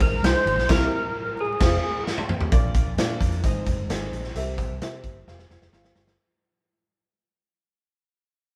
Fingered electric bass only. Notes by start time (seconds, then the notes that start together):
0.12 A#1
0.22 C2
0.45 G#1
0.57 A#1
0.69 C2
1.61 F1
2.52 A#1
2.87 A#1
2.97 A#2
3.21 F2
3.44 G#1
3.66 F1
3.78 G1
3.89 G#1
4.12 A#1
4.35 C2
4.69 C2
4.80 C3
5.04 G1
5.27 F1
5.49 F1
5.61 F1
5.72 G#1
5.95 G1